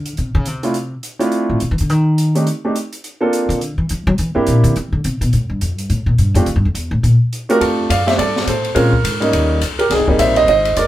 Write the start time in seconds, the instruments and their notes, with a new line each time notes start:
Already playing: upright bass D3
0.06 closed hi-hat
0.17 upright bass C3, closed hi-hat
0.35 upright bass C#3
0.46 upright bass C3, closed hi-hat
0.63 grand piano A3 C4 D4 E4 F4, closed hi-hat
0.74 closed hi-hat
1.03 closed hi-hat
1.19 grand piano A3 C4 D4 E4 F4, closed hi-hat
1.32 closed hi-hat
1.50 upright bass A2
1.60 upright bass C3, closed hi-hat
1.71 upright bass E3
1.78 upright bass D3, closed hi-hat
1.90 upright bass D#3, closed hi-hat
2.18 closed hi-hat
2.35 grand piano A3 C4 D4 D#4 G4, closed hi-hat
2.47 closed hi-hat
2.65 grand piano A3 C4 D4 D#4 G4
2.76 closed hi-hat
2.93 closed hi-hat
3.04 closed hi-hat
3.21 grand piano A#3 C4 D4 F4 A4
3.33 closed hi-hat
3.49 upright bass C#3, closed hi-hat
3.61 upright bass D3, closed hi-hat
3.78 upright bass E3
3.89 upright bass F3, closed hi-hat
4.07 upright bass F#3
4.18 upright bass E3, closed hi-hat
4.35 upright bass G2, grand piano A#3 C4 D4 E4 G4
4.47 upright bass A#2, closed hi-hat
4.64 upright bass D3, closed hi-hat
4.76 upright bass E3, closed hi-hat
4.92 upright bass D3
5.04 upright bass C3, closed hi-hat
5.21 upright bass B2, closed hi-hat
5.33 upright bass A2, closed hi-hat
5.50 upright bass G2
5.61 upright bass F2, closed hi-hat
5.78 upright bass G2, closed hi-hat
5.90 upright bass A2, closed hi-hat
6.06 upright bass A#2
6.18 upright bass G2, closed hi-hat
6.34 upright bass F#2, grand piano A3 C4 D4 F4 G4, closed hi-hat
6.46 upright bass F2, closed hi-hat
6.56 upright bass G2
6.65 upright bass F2
6.75 upright bass E2, closed hi-hat
6.91 upright bass A2
7.03 upright bass A#2, closed hi-hat
7.33 closed hi-hat
7.49 grand piano A3 C4 D4 F4 F#4 G4 A#4, closed hi-hat
7.61 upright bass F2, grand piano F4 A4, kick, ride
7.90 upright bass F#2, grand piano D5 F5, kick, hi-hat pedal, ride
8.06 grand piano A3 C4 D4 G4 C5 E5, snare, ride
8.18 upright bass G2, grand piano A4 D5, kick, ride
8.36 snare
8.47 upright bass A2, grand piano A4 C5, kick, hi-hat pedal, ride
8.65 ride
8.75 upright bass A#2, grand piano G#3 C4 C#4 F4 A#4, kick, ride
8.93 kick
9.04 upright bass G#2, kick, hi-hat pedal, ride
9.20 grand piano G3 A#3 C#4 D#4, ride
9.33 upright bass D#2, kick, ride
9.61 upright bass C#2, kick, hi-hat pedal, ride
9.79 grand piano G4 A#4, ride
9.90 upright bass C2, grand piano D#4 G#4, kick, snare, ride
10.00 upright bass G#1
10.08 upright bass G1, grand piano G3 A#3 C4 D#4, kick
10.19 upright bass A#1, grand piano C5 E5, kick, hi-hat pedal, ride
10.36 grand piano C5 D#5, ride
10.47 upright bass G#1, grand piano C5 D#5, kick, ride
10.65 ride
10.76 upright bass F1, grand piano A#4 D5, kick, hi-hat pedal, ride